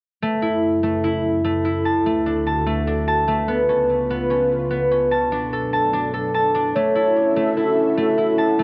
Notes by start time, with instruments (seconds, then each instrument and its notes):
0.22 analog synth pad F#2 C#3 E4 A4, harp A3
0.42 harp E4
0.83 harp A3
1.04 harp E4
1.44 harp A3
1.65 harp E4
1.85 analog synth pad D2 D3 F#4, harp A5
2.06 harp A3
2.26 harp D4
2.47 harp A5
2.67 harp A3
2.87 harp D4
3.08 harp A5
3.28 harp A3
3.48 analog synth pad C#2 C#3 F4 B4, harp B3
3.69 harp C#4
4.10 harp B3
4.30 harp C#4
4.70 harp B3
4.91 harp C#4
5.11 analog synth pad B2 F#3 D4 A4, harp A5
5.32 harp D4
5.53 harp A4
5.73 harp A5
5.93 harp D4
6.14 harp A4
6.34 harp A5
6.55 harp D4
6.75 harp A3, analog synth pad C#4 F#4 A4 E5, soft synth lead C#5
6.95 harp E4
7.36 harp A3
7.57 harp E4, soft synth lead A4
7.97 harp A3
8.18 harp E4
8.38 analog synth pad D4 A4 F#5, harp A5
8.59 harp A3